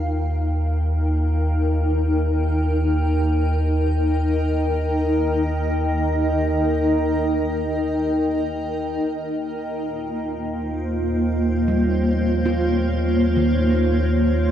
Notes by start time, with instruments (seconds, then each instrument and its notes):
Already playing: analog synth bass D#2, ambient pad D#4 A#4 F5 G5
2.36 ambient pad D#5
9.03 analog synth bass D#2, ambient pad A#3
9.42 ambient pad F4
10.12 ambient pad C5
11.11 ambient pad C#5
11.68 handpan G3
12.46 handpan F4
13.37 handpan D#3